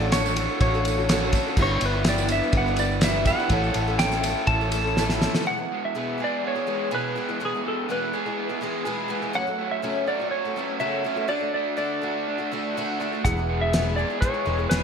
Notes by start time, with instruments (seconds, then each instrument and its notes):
Already playing: fingered electric bass A1, overdriven electric guitar D3 A3 D4 F#4, grand piano D4 F#4 C#6, harmonium F#4 A4 A5, electric slide guitar D5
0.00 twelve-string acoustic guitar C#4 F#4 A4
0.12 twelve-string acoustic guitar A2 D3 C#4 F#4 A4, overdriven electric guitar A3 D4, electric slide guitar C#5, snare, ride, tambourine
0.25 twelve-string acoustic guitar F#4 A4, tambourine
0.36 overdriven electric guitar A3 D4 F#4, ride
0.49 tambourine
0.60 fingered electric bass A1, electric slide guitar C#5, kick, ride, tambourine
0.74 twelve-string acoustic guitar C#4 F#4 A4, tambourine
0.85 twelve-string acoustic guitar D3 C#4 F#4, ride, tambourine
0.89 twelve-string acoustic guitar A4
0.98 twelve-string acoustic guitar C#4 F#4 A4, tambourine
1.09 twelve-string acoustic guitar A2 D3 C#4 F#4 A4, overdriven electric guitar A3 D4, grand piano D4 F#4 C#5, snare, ride, tambourine
1.24 tambourine
1.33 twelve-string acoustic guitar D3 C#4 F#4 A4, overdriven electric guitar A3 D4, kick, ride, tambourine
1.46 twelve-string acoustic guitar C#4 F#4 A4, tambourine
1.55 fingered electric bass G1, overdriven electric guitar G2 D3 B3, twelve-string acoustic guitar G3 D4, harmonium E4 B4 D5 G5, grand piano E4 G4 B4, kick, crash
1.59 twelve-string acoustic guitar E4 B4, overdriven electric guitar G4, electric slide guitar C#5, tambourine
1.81 fingered electric bass G1, overdriven electric guitar G3 B3 D4 G4, ride, tambourine
1.85 electric slide guitar B4
1.93 twelve-string acoustic guitar D4 E4 B4
2.04 overdriven electric guitar G2 D3 B3 G4, twelve-string acoustic guitar G3 D4 E4 B4, snare, ride, tambourine
2.09 electric slide guitar D5
2.17 twelve-string acoustic guitar D4 E4 B4, tambourine
2.28 overdriven electric guitar G3 B3 D4 G4, electric slide guitar E5, ride, tambourine
2.41 twelve-string acoustic guitar D4 E4 B4, tambourine
2.53 fingered electric bass G1, kick, ride, tambourine
2.57 electric slide guitar F#5
2.66 twelve-string acoustic guitar D4 E4 B4, tambourine
2.76 twelve-string acoustic guitar G3 D4 E4 B4, electric slide guitar D5, ride, tambourine
2.91 tambourine
3.01 twelve-string acoustic guitar G3 D4 E4 B4, overdriven electric guitar B3, electric slide guitar E5, snare, ride, tambourine
3.06 overdriven electric guitar G4
3.16 tambourine
3.25 twelve-string acoustic guitar G3 D4 E4 B4, overdriven electric guitar B3 G4, electric slide guitar F#5, kick, ride, tambourine
3.38 twelve-string acoustic guitar D4 E4 B4, tambourine
3.49 fingered electric bass A1, twelve-string acoustic guitar A2 A3 C#4 E4 A4, overdriven electric guitar E3, grand piano E4 A4 C#5, harmonium A4 C#5 A5, kick, ride, tambourine
3.64 tambourine
3.74 fingered electric bass A1, overdriven electric guitar A3 C#4 A4, ride, tambourine
3.87 twelve-string acoustic guitar C#4 E4 A4, tambourine
3.99 twelve-string acoustic guitar A2 A3 C#4 E4 A4, overdriven electric guitar E3, electric slide guitar G5, snare, ride, tambourine
4.11 twelve-string acoustic guitar C#4 E4 A4, snare, tambourine
4.24 overdriven electric guitar A3 C#4 A4, ride, tambourine
4.37 tambourine
4.47 fingered electric bass A1, electric slide guitar A5, kick, ride, tambourine
4.61 twelve-string acoustic guitar C#4 E4 A4, tambourine
4.72 twelve-string acoustic guitar A3 C#4 E4 A4, ride, tambourine
4.84 twelve-string acoustic guitar C#4 E4 A4, tambourine
4.97 twelve-string acoustic guitar A2 A3 C#4 E4 A4, overdriven electric guitar E3, snare, tambourine
5.09 snare, tambourine
5.20 twelve-string acoustic guitar A3 C#4 E4, overdriven electric guitar A4, snare, tambourine
5.24 twelve-string acoustic guitar A4
5.34 twelve-string acoustic guitar C#4 E4 A4, snare, tambourine
5.46 twelve-string acoustic guitar E2 B2 E3 G#3 B3 G#4, electric slide guitar F#5
5.57 twelve-string acoustic guitar E3 G#3 B3 G#4
5.71 overdriven electric guitar G#3
5.85 electric slide guitar E5
5.95 twelve-string acoustic guitar E2 B2 E3 G#3 B3 G#4
6.18 twelve-string acoustic guitar E3 G#3 B3 G#4
6.24 electric slide guitar D5
6.44 overdriven electric guitar B3, electric slide guitar C#5
6.55 twelve-string acoustic guitar E3 G#3 B3 G#4
6.67 twelve-string acoustic guitar E3 G#3 B3 G#4
6.91 twelve-string acoustic guitar E2 B2 E3 G#3 B3 G#4, electric slide guitar B4
7.16 twelve-string acoustic guitar E3 G#3 B3 G#4
7.28 twelve-string acoustic guitar E3 G#3 B3 G#4
7.40 twelve-string acoustic guitar E2 B2 E3 G#3 B3 G#4
7.45 electric slide guitar G#4
7.54 twelve-string acoustic guitar E3 G#3 B3 G#4
7.64 overdriven electric guitar G#3
7.68 electric slide guitar A4
7.89 twelve-string acoustic guitar E2 B2 E3 G#3 B3 G#4, electric slide guitar B4
8.13 twelve-string acoustic guitar E3 G#3 B3 G#4
8.26 twelve-string acoustic guitar E3 G#3 B3 G#4
8.38 overdriven electric guitar B3
8.49 twelve-string acoustic guitar E3 G#3 B3 G#4
8.61 twelve-string acoustic guitar E3 G#3 B3 G#4
8.85 twelve-string acoustic guitar E2 B2 E3 G#3 B3 G#4
9.08 twelve-string acoustic guitar E3 G#3 B3 G#4
9.22 twelve-string acoustic guitar E3 G#3 B3 G#4
9.33 twelve-string acoustic guitar F#2 C#3 F#3 A3 C#4 F#4, electric slide guitar F#5
9.47 twelve-string acoustic guitar F#3 A3 C#4 F#4
9.59 overdriven electric guitar A3
9.71 electric slide guitar E5
9.82 twelve-string acoustic guitar F#2 C#3 F#3 A3 C#4 F#4
10.07 twelve-string acoustic guitar F#3 A3 C#4 F#4, electric slide guitar D5
10.19 twelve-string acoustic guitar F#3 A3 C#4 F#4
10.31 overdriven electric guitar C#4, electric slide guitar C#5
10.45 twelve-string acoustic guitar F#3 A3 C#4 F#4
10.56 twelve-string acoustic guitar F#3 A3 C#4 F#4
10.80 twelve-string acoustic guitar F#2 C#3 F#3 A3 C#4 F#4, electric slide guitar E5
11.04 twelve-string acoustic guitar F#3 A3 C#4 F#4
11.16 twelve-string acoustic guitar F#3 A3 C#4 F#4
11.27 twelve-string acoustic guitar D3 A3 D4 F#4, electric slide guitar D5
11.39 twelve-string acoustic guitar A3 D4 F#4
11.54 overdriven electric guitar A3, electric slide guitar D5
11.77 twelve-string acoustic guitar D3 A3 D4 F#4, electric slide guitar D5
12.02 twelve-string acoustic guitar D3 A3 D4 F#4
12.28 overdriven electric guitar D4
12.38 twelve-string acoustic guitar A3 D4 F#4
12.52 twelve-string acoustic guitar D3 A3 D4 F#4
12.77 twelve-string acoustic guitar D3 A3 D4 F#4
13.00 twelve-string acoustic guitar D3 A3 D4 F#4
13.13 twelve-string acoustic guitar A3 D4 F#4
13.25 fingered electric bass E1, twelve-string acoustic guitar E2 B2 E3 G#3 B3 G#4, grand piano E4 G#4 B4, electric slide guitar F#5, kick, closed hi-hat
13.37 twelve-string acoustic guitar E3 G#3 B3 G#4
13.49 overdriven electric guitar G#3
13.61 electric slide guitar E5
13.73 twelve-string acoustic guitar E2 B2 E3 G#3 B3 G#4, snare, closed hi-hat
13.96 twelve-string acoustic guitar E3 G#3 B3 G#4, electric slide guitar D5
14.10 twelve-string acoustic guitar E3 G#3 B3 G#4
14.21 overdriven electric guitar B3, electric slide guitar C#5, kick, closed hi-hat
14.33 twelve-string acoustic guitar E3 G#3 B3 G#4
14.45 fingered electric bass E1, twelve-string acoustic guitar E3 G#3 B3 G#4
14.58 twelve-string acoustic guitar E3 G#3 B3 G#4
14.69 fingered electric bass E1, twelve-string acoustic guitar E2 B2 E3 G#3 B3 G#4, electric slide guitar B4, snare, closed hi-hat